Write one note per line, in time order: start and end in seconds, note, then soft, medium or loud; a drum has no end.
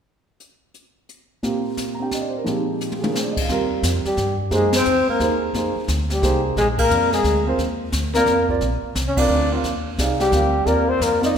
0.40 closed hi-hat soft
0.74 closed hi-hat soft
1.09 closed hi-hat soft
1.43 2.43 A#2 soft
1.43 2.46 A#3 soft
1.43 1.98 C4 soft
1.43 2.46 F4 soft
1.43 2.01 G4 medium
1.43 brush sweep soft
1.43 kick soft
1.43 snare soft
1.77 kick soft
1.77 snare soft
1.77 hi-hat pedal soft
1.95 2.05 A#5 soft
2.00 2.46 C4 soft
2.00 2.46 D4 soft
2.00 2.47 G4 soft
2.00 2.15 G5 soft
2.11 2.28 D#5 soft
2.11 kick soft
2.11 snare soft
2.21 2.35 D5 soft
2.29 2.40 C5 soft
2.37 2.49 A#4 soft
2.44 3.48 A#2 soft
2.44 3.48 F3 soft
2.44 3.48 G#3 soft
2.44 3.48 C4 soft
2.44 brush sweep soft
2.44 kick soft
2.44 snare soft
2.48 3.50 D#4 soft
2.48 3.50 G4 medium
2.81 hi-hat pedal soft
2.92 high tom soft
2.99 3.48 D#3 soft
2.99 3.48 A#3 soft
2.99 3.03 G#4 soft
3.03 3.49 D4 soft
3.03 3.49 F4 soft
3.03 3.49 G#4 soft
3.03 3.17 A#4 soft
3.03 high tom medium
3.14 3.29 C5 soft
3.14 snare soft
3.23 3.37 D5 soft
3.31 3.42 D#5 soft
3.37 kick medium
3.37 crash medium
3.42 3.53 F5 soft
3.49 3.82 D#2 medium
3.49 4.01 G3 medium
3.49 4.01 C4 medium
3.49 4.01 F4 medium
3.49 4.02 A#4 medium
3.49 brush sweep soft
3.49 kick soft
3.49 snare soft
3.83 4.03 F2 medium
3.83 kick soft
3.83 snare medium
3.83 hi-hat pedal medium
4.05 4.37 G3 medium
4.05 4.37 G4 medium
4.05 muted upright bass stroke soft
4.05 snare soft
4.17 4.50 G2 medium
4.17 kick soft
4.17 snare soft
4.51 4.84 F#2 medium
4.51 4.73 G#3 medium
4.51 4.71 A#3 medium
4.51 4.71 D#4 soft
4.51 4.71 G#4 soft
4.51 4.73 G#4 medium
4.51 4.72 C5 medium
4.51 brush sweep soft
4.51 kick soft
4.51 snare soft
4.73 5.06 C5 loud
4.73 snare medium
4.73 ride medium
4.77 5.07 C4 medium
4.85 5.06 E2 medium
4.85 hi-hat pedal soft
5.08 5.40 A#3 medium
5.08 5.41 A#4 medium
5.08 muted upright bass stroke soft
5.20 5.53 D#2 medium
5.20 5.53 A#3 medium
5.20 5.54 D#4 medium
5.20 5.54 G#4 soft
5.20 5.55 C5 medium
5.20 kick soft
5.20 snare soft
5.54 5.74 F2 medium
5.54 5.74 A#3 medium
5.54 5.74 D#4 soft
5.54 5.75 G#4 soft
5.54 5.75 C5 medium
5.54 brush sweep soft
5.54 kick soft
5.54 snare soft
5.76 muted upright bass stroke soft
5.88 6.21 D2 medium
5.88 kick soft
5.88 snare medium
5.88 hi-hat pedal soft
6.10 6.43 G3 medium
6.10 6.43 G4 medium
6.10 snare soft
6.22 6.55 C2 medium
6.22 6.56 A#3 medium
6.22 6.57 D#4 medium
6.22 6.57 G#4 medium
6.22 6.57 C5 medium
6.22 kick soft
6.22 snare soft
6.56 6.89 A#1 medium
6.56 6.67 G#3 medium
6.56 6.68 G#4 medium
6.56 brush sweep soft
6.56 kick soft
6.56 snare soft
6.78 7.10 A#3 medium
6.78 7.11 A#4 loud
6.78 kick medium
6.78 ride medium
6.90 7.23 F2 medium
6.90 7.10 C4 medium
6.90 7.11 F4 medium
6.90 7.12 A#4 medium
6.90 7.12 D5 medium
6.90 hi-hat pedal medium
7.12 7.45 G#3 medium
7.12 7.45 G#4 medium
7.12 snare soft
7.24 7.57 D2 medium
7.24 kick soft
7.24 snare soft
7.47 7.58 C4 medium
7.47 7.58 F4 medium
7.47 7.58 A#4 medium
7.47 7.59 C5 medium
7.58 7.92 D#2 medium
7.58 brush sweep soft
7.58 kick soft
7.58 snare soft
7.92 8.25 D2 medium
7.92 kick soft
7.92 snare medium
7.92 hi-hat pedal medium
8.14 8.47 A#3 medium
8.14 8.47 C4 medium
8.14 8.48 F4 medium
8.14 8.47 A#4 loud
8.14 8.48 A#4 medium
8.14 8.48 D5 medium
8.14 snare soft
8.26 8.60 F2 medium
8.26 kick soft
8.26 snare soft
8.49 8.60 C4 medium
8.49 8.61 F4 medium
8.49 8.61 A#4 medium
8.49 8.61 D5 medium
8.49 kick soft
8.61 8.82 A#1 medium
8.61 brush sweep soft
8.61 kick soft
8.61 snare soft
8.83 muted upright bass stroke soft
8.95 9.27 C2 medium
8.95 kick soft
8.95 snare medium
8.95 hi-hat pedal soft
9.08 9.18 C#4 medium
9.08 9.20 C#5 medium
9.17 9.49 C4 medium
9.17 9.52 D4 medium
9.17 9.50 F4 medium
9.17 9.50 A#4 medium
9.17 9.52 D5 loud
9.17 9.51 D5 medium
9.17 kick medium
9.17 ride medium
9.28 9.62 D2 medium
9.52 9.63 C4 medium
9.52 9.63 F4 medium
9.52 9.64 A#4 medium
9.52 9.64 F5 medium
9.64 9.97 D#2 medium
9.64 brush sweep soft
9.64 kick soft
9.64 snare soft
9.98 10.31 C2 medium
9.98 10.19 D#4 medium
9.98 10.19 G#4 medium
9.98 10.19 D5 medium
9.98 10.20 F5 medium
9.98 kick soft
9.98 snare medium
9.98 hi-hat pedal soft
10.20 10.70 G3 medium
10.20 10.68 G4 medium
10.20 snare soft
10.32 10.65 D2 medium
10.32 10.52 C4 medium
10.32 10.52 F4 medium
10.32 10.53 A#4 soft
10.32 10.53 F5 medium
10.32 kick soft
10.32 snare soft
10.66 11.00 D#2 medium
10.66 10.92 A#3 medium
10.66 11.18 C4 medium
10.66 11.19 F4 medium
10.66 10.90 A#4 medium
10.66 11.19 A#4 medium
10.66 11.20 D5 medium
10.66 brush sweep soft
10.66 kick soft
10.66 snare soft
10.89 11.04 C4 medium
10.89 11.04 C5 medium
11.00 11.34 F2 medium
11.00 11.24 A#3 medium
11.00 11.24 A#4 medium
11.00 kick soft
11.00 snare medium
11.00 hi-hat pedal medium
11.21 11.38 C4 medium
11.21 11.38 F4 medium
11.21 11.38 A#4 medium
11.21 11.38 D5 medium
11.21 11.38 D#5 medium
11.21 snare soft
11.26 11.38 D#4 medium